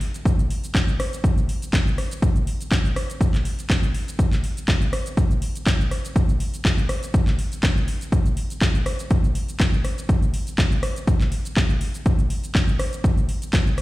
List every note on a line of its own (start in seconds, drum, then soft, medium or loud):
0.01 open hi-hat loud
0.14 closed hi-hat medium
0.14 cabasa medium
0.25 kick loud
0.25 closed hi-hat medium
0.25 cabasa medium
0.39 closed hi-hat soft
0.39 cabasa soft
0.50 open hi-hat loud
0.64 closed hi-hat medium
0.64 cabasa medium
0.75 kick loud
0.75 clap loud
0.75 closed hi-hat medium
0.75 cabasa medium
0.88 closed hi-hat soft
0.88 cabasa soft
1.00 cross-stick medium
1.00 open hi-hat loud
1.13 closed hi-hat medium
1.13 cabasa medium
1.24 kick loud
1.24 closed hi-hat medium
1.24 cabasa medium
1.38 closed hi-hat soft
1.38 cabasa soft
1.49 open hi-hat loud
1.62 closed hi-hat medium
1.62 cabasa medium
1.73 kick loud
1.73 clap loud
1.73 closed hi-hat medium
1.73 cabasa medium
1.88 cabasa soft
1.98 cross-stick medium
1.98 open hi-hat loud
2.11 closed hi-hat medium
2.11 cabasa medium
2.22 kick loud
2.22 closed hi-hat medium
2.22 cabasa medium
2.36 closed hi-hat soft
2.36 cabasa soft
2.47 open hi-hat loud
2.61 closed hi-hat medium
2.61 cabasa medium
2.71 kick loud
2.71 clap loud
2.71 closed hi-hat medium
2.71 cabasa medium
2.85 closed hi-hat soft
2.85 cabasa soft
2.96 cross-stick medium
2.96 open hi-hat loud
3.10 closed hi-hat medium
3.10 cabasa medium
3.21 kick loud
3.21 closed hi-hat medium
3.21 cabasa medium
3.34 clap soft
3.34 closed hi-hat soft
3.34 cabasa soft
3.45 open hi-hat loud
3.59 closed hi-hat medium
3.59 cabasa medium
3.70 kick loud
3.70 clap loud
3.70 closed hi-hat medium
3.70 cabasa medium
3.83 closed hi-hat soft
3.83 cabasa soft
3.94 open hi-hat loud
4.08 closed hi-hat medium
4.08 cabasa medium
4.19 kick loud
4.19 closed hi-hat medium
4.19 cabasa medium
4.33 clap soft
4.33 closed hi-hat soft
4.33 cabasa soft
4.44 open hi-hat loud
4.57 closed hi-hat medium
4.57 cabasa medium
4.68 kick loud
4.68 clap loud
4.68 closed hi-hat medium
4.68 cabasa medium
4.82 closed hi-hat soft
4.82 cabasa soft
4.93 cross-stick medium
4.93 open hi-hat loud
5.06 closed hi-hat medium
5.06 cabasa medium
5.17 kick loud
5.17 closed hi-hat medium
5.17 cabasa medium
5.31 closed hi-hat soft
5.31 cabasa soft
5.42 open hi-hat loud
5.55 closed hi-hat medium
5.55 cabasa medium
5.67 kick loud
5.67 clap loud
5.67 closed hi-hat medium
5.67 cabasa medium
5.81 cabasa soft
5.91 cross-stick medium
5.91 open hi-hat loud
6.05 closed hi-hat medium
6.05 cabasa medium
6.16 kick loud
6.16 closed hi-hat medium
6.16 cabasa medium
6.29 closed hi-hat soft
6.29 cabasa soft
6.40 open hi-hat loud
6.54 closed hi-hat medium
6.54 cabasa medium
6.65 kick loud
6.65 clap loud
6.65 closed hi-hat medium
6.65 cabasa medium
6.78 closed hi-hat soft
6.78 cabasa soft
6.89 cross-stick medium
6.89 open hi-hat loud
7.03 closed hi-hat medium
7.03 cabasa medium
7.14 kick loud
7.14 closed hi-hat medium
7.14 cabasa medium
7.27 clap soft
7.27 closed hi-hat soft
7.27 cabasa soft
7.39 open hi-hat loud
7.52 closed hi-hat medium
7.52 cabasa medium
7.63 kick loud
7.63 clap loud
7.63 closed hi-hat medium
7.63 cabasa medium
7.77 cabasa soft
7.88 open hi-hat loud
8.01 closed hi-hat medium
8.01 cabasa medium
8.12 kick loud
8.12 closed hi-hat medium
8.12 cabasa medium
8.26 closed hi-hat soft
8.26 cabasa soft
8.37 open hi-hat loud
8.50 closed hi-hat medium
8.50 cabasa medium
8.61 kick loud
8.61 clap loud
8.61 closed hi-hat medium
8.61 cabasa medium
8.75 closed hi-hat soft
8.75 cabasa soft
8.86 cross-stick medium
8.86 open hi-hat loud
8.99 closed hi-hat medium
8.99 cabasa medium
9.10 kick loud
9.10 closed hi-hat medium
9.10 cabasa medium
9.24 closed hi-hat soft
9.24 cabasa soft
9.35 open hi-hat loud
9.48 closed hi-hat medium
9.48 cabasa medium
9.60 kick loud
9.60 clap loud
9.60 closed hi-hat medium
9.60 cabasa medium
9.74 cabasa soft
9.84 cross-stick medium
9.84 open hi-hat loud
9.98 closed hi-hat medium
9.98 cabasa medium
10.09 kick loud
10.09 closed hi-hat medium
10.09 cabasa medium
10.22 closed hi-hat soft
10.22 cabasa soft
10.34 open hi-hat loud
10.47 closed hi-hat soft
10.47 cabasa medium
10.58 kick loud
10.58 clap loud
10.58 closed hi-hat medium
10.58 cabasa medium
10.72 closed hi-hat soft
10.72 cabasa soft
10.83 cross-stick medium
10.83 open hi-hat loud
10.96 closed hi-hat soft
10.96 cabasa medium
11.07 kick loud
11.07 closed hi-hat medium
11.07 cabasa medium
11.21 clap soft
11.21 closed hi-hat soft
11.21 cabasa soft
11.32 open hi-hat loud
11.45 closed hi-hat medium
11.45 cabasa medium
11.57 kick loud
11.57 clap loud
11.57 closed hi-hat medium
11.57 cabasa medium
11.70 closed hi-hat soft
11.70 cabasa soft
11.81 open hi-hat loud
11.94 closed hi-hat soft
11.94 cabasa medium
12.06 kick loud
12.06 closed hi-hat medium
12.06 cabasa medium
12.19 closed hi-hat soft
12.19 cabasa soft
12.30 open hi-hat loud
12.44 closed hi-hat soft
12.44 cabasa medium
12.55 kick loud
12.55 clap loud
12.55 closed hi-hat medium
12.55 cabasa medium
12.68 closed hi-hat soft
12.68 cabasa soft
12.79 cross-stick medium
12.79 open hi-hat loud
12.93 closed hi-hat medium
12.93 cabasa medium
13.04 kick loud
13.04 closed hi-hat medium
13.04 cabasa medium
13.18 closed hi-hat soft
13.18 cabasa soft
13.29 open hi-hat loud
13.42 closed hi-hat medium
13.42 cabasa medium
13.53 kick loud
13.53 clap loud
13.53 closed hi-hat medium
13.53 cabasa medium
13.67 cabasa soft
13.78 cross-stick medium
13.78 open hi-hat loud